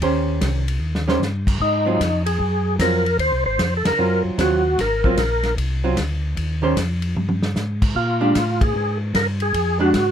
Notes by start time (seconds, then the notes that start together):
0.02 D#2 D#3 C#4 G4 C5, kick, ride
0.41 C2, kick, snare, hi-hat pedal, ride
0.68 ride
0.80 D#2
0.95 snare
1.07 D#3 C#4 G4 C5, snare
1.19 G2, snare, hi-hat pedal
1.47 kick, crash
1.60 G#2 D#4, kick
1.86 F#3 C4 F4
2.00 F2, kick, snare, hi-hat pedal, ride
2.26 G#4, ride
2.40 F#2, kick
2.79 F2 F#3 C4 F4 A#4, kick, snare, hi-hat pedal, ride
3.06 ride
3.19 D#2 C5, kick, ride
3.33 C2
3.46 G#1 C5
3.59 F2, kick, snare, hi-hat pedal, ride
3.77 A4
3.85 F2 A#4, snare, ride
3.99 F#2 F#3 C4 F4
4.24 F#2
4.38 D#2 F#3 C4 F4 F#4, kick, snare, hi-hat pedal, ride
4.78 G#1 A#4, kick, snare, ride
5.04 F#3 C4 F4, kick
5.17 A#1, kick, snare, hi-hat pedal, ride
5.43 snare, ride
5.57 C2, kick, ride
5.84 F#3 C4 F4
5.97 D2, kick, snare, hi-hat pedal, ride
6.37 D#2, kick, ride
6.62 D#3 C#4 G4 C5
6.77 F2, kick, snare, hi-hat pedal, ride
7.02 ride
7.16 G2, high tom
7.29 high tom
7.42 snare
7.56 G#2, snare, hi-hat pedal
7.82 kick, crash
7.95 A#2 F4, kick
8.21 G#3 D4 G4
8.35 A2, kick, snare, hi-hat pedal, ride
8.61 G#4, kick, ride
8.75 G#2
9.14 G2 A#4, kick, snare, hi-hat pedal, ride
9.40 G#4, ride
9.54 F2, kick, ride
9.79 G#3 D4 F#4 G4
9.94 G#2, kick, snare, hi-hat pedal, ride